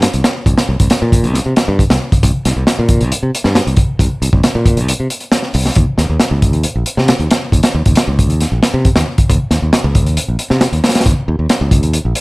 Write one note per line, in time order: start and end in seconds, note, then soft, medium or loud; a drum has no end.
0.02 snare loud
0.02 closed hi-hat medium
0.13 0.21 C2 medium
0.13 closed hi-hat soft
0.24 snare loud
0.24 closed hi-hat medium
0.46 0.54 C2 medium
0.46 kick loud
0.46 closed hi-hat medium
0.58 snare loud
0.58 closed hi-hat medium
0.69 0.76 C2 loud
0.80 0.87 C2 medium
0.80 kick medium
0.80 closed hi-hat medium
0.90 snare loud
0.90 closed hi-hat medium
1.02 1.25 A#2 loud
1.12 kick loud
1.12 closed hi-hat medium
1.24 1.38 C2 loud
1.24 closed hi-hat soft
1.34 snare soft
1.34 closed hi-hat medium
1.46 1.53 C3 medium
1.56 snare loud
1.56 closed hi-hat medium
1.68 1.82 G2 loud
1.79 kick medium
1.79 closed hi-hat medium
1.90 1.97 C2 medium
1.90 snare loud
1.90 closed hi-hat medium
2.12 kick medium
2.12 closed hi-hat medium
2.23 2.30 C2 loud
2.23 kick loud
2.23 closed hi-hat loud
2.45 2.53 C2 loud
2.45 snare soft
2.45 closed hi-hat medium
2.56 2.64 C2 medium
2.67 snare loud
2.67 closed hi-hat medium
2.79 3.03 A#2 loud
2.89 kick loud
2.89 closed hi-hat medium
3.01 3.11 C2 medium
3.01 closed hi-hat soft
3.12 muted fingered electric bass stroke soft
3.12 closed hi-hat loud
3.23 3.30 C3 medium
3.35 closed hi-hat medium
3.44 3.59 G2 loud
3.44 snare soft
3.55 snare loud
3.55 closed hi-hat medium
3.67 3.74 C2 medium
3.67 closed hi-hat soft
3.77 kick loud
3.77 closed hi-hat medium
3.99 4.07 C2 medium
3.99 kick loud
3.99 closed hi-hat medium
4.22 4.29 C2 medium
4.22 closed hi-hat medium
4.33 4.40 C2 medium
4.33 kick loud
4.44 snare loud
4.44 closed hi-hat medium
4.55 4.79 A#2 loud
4.66 kick medium
4.66 closed hi-hat medium
4.77 4.91 C2 loud
4.77 closed hi-hat soft
4.88 closed hi-hat loud
5.00 5.06 C3 medium
5.10 closed hi-hat medium
5.20 closed hi-hat soft
5.32 snare loud
5.32 closed hi-hat medium
5.42 snare soft
5.54 5.69 C2 loud
5.54 open hi-hat medium
5.66 snare soft
5.75 5.84 D#2 medium
5.75 kick loud
5.75 closed hi-hat medium
5.98 6.05 D#2 medium
5.98 snare soft
5.98 closed hi-hat medium
6.09 6.17 D#2 medium
6.20 snare loud
6.20 closed hi-hat medium
6.31 6.53 C#2 loud
6.42 kick loud
6.42 closed hi-hat medium
6.53 6.64 D#2 loud
6.53 closed hi-hat soft
6.63 muted fingered electric bass stroke soft
6.63 closed hi-hat medium
6.75 6.83 A#1 medium
6.86 closed hi-hat medium
6.97 7.12 C3 loud
6.97 snare medium
7.08 snare loud
7.08 closed hi-hat medium
7.19 7.27 D#2 medium
7.19 closed hi-hat soft
7.31 snare loud
7.31 closed hi-hat medium
7.52 7.60 D#2 loud
7.52 kick medium
7.52 closed hi-hat medium
7.63 snare loud
7.63 closed hi-hat medium
7.75 7.82 D#2 loud
7.86 7.93 D#2 medium
7.86 kick medium
7.86 closed hi-hat medium
7.95 snare loud
7.95 closed hi-hat medium
8.08 8.30 C#2 loud
8.19 kick medium
8.19 closed hi-hat medium
8.30 8.44 D#2 loud
8.30 closed hi-hat soft
8.40 snare soft
8.40 closed hi-hat medium
8.52 8.59 A#1 medium
8.63 snare loud
8.63 closed hi-hat medium
8.74 8.88 C3 loud
8.85 kick medium
8.85 closed hi-hat medium
8.96 9.03 D#2 medium
8.96 snare loud
8.96 closed hi-hat medium
9.18 kick medium
9.18 closed hi-hat medium
9.30 9.37 D#2 loud
9.30 kick loud
9.30 closed hi-hat medium
9.51 9.58 D#2 loud
9.51 snare soft
9.51 closed hi-hat medium
9.62 9.69 D#2 medium
9.73 snare loud
9.73 closed hi-hat medium
9.84 10.06 C#2 loud
9.95 kick loud
9.95 closed hi-hat medium
10.06 10.17 D#2 loud
10.06 closed hi-hat soft
10.17 muted fingered electric bass stroke soft
10.17 closed hi-hat medium
10.28 10.36 A#1 medium
10.39 closed hi-hat medium
10.50 10.65 C3 loud
10.50 snare soft
10.61 snare loud
10.61 closed hi-hat medium
10.72 10.80 D#2 medium
10.72 closed hi-hat soft
10.84 snare loud
10.84 closed hi-hat medium
10.89 snare medium
10.89 closed hi-hat medium
10.95 snare loud
10.95 closed hi-hat medium
11.01 snare loud
11.01 closed hi-hat medium
11.06 11.13 D#2 loud
11.06 kick loud
11.06 closed hi-hat medium
11.28 11.35 D#2 loud
11.39 11.46 D#2 medium
11.49 snare loud
11.49 closed hi-hat medium
11.61 11.83 C#2 loud
11.71 kick medium
11.71 closed hi-hat medium
11.83 11.97 D#2 loud
11.83 closed hi-hat soft
11.93 closed hi-hat medium
12.05 12.12 A#1 medium
12.15 closed hi-hat medium